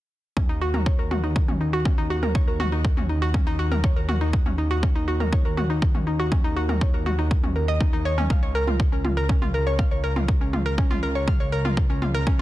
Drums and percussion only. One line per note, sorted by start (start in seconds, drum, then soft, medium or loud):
0.37 kick loud
0.37 mid tom medium
0.74 mid tom loud
0.86 kick loud
1.11 mid tom loud
1.36 kick loud
1.48 mid tom medium
1.85 kick loud
1.85 mid tom loud
2.23 mid tom loud
2.35 kick loud
2.60 mid tom medium
2.85 kick loud
2.97 mid tom medium
3.34 kick loud
3.34 mid tom medium
3.72 mid tom medium
3.84 kick loud
4.09 mid tom medium
4.33 kick loud
4.46 mid tom medium
4.83 kick loud
4.83 mid tom medium
5.20 mid tom medium
5.33 kick loud
5.57 mid tom medium
5.82 kick loud
5.95 mid tom medium
6.32 kick loud
6.32 mid tom medium
6.69 mid tom medium
6.81 kick loud
7.06 mid tom medium
7.31 kick loud
7.43 mid tom medium
7.81 kick loud
7.81 mid tom medium
8.18 mid tom medium
8.30 kick loud
8.30 mid tom medium
8.67 mid tom medium
8.80 kick loud
9.05 mid tom medium
9.29 kick loud
9.42 mid tom medium
9.79 kick loud
9.79 mid tom medium
10.16 mid tom loud
10.28 kick loud
10.53 mid tom medium
10.78 kick loud
10.91 mid tom medium
11.28 kick loud
11.28 mid tom medium
11.65 mid tom medium
11.77 kick loud
12.02 mid tom medium
12.27 kick loud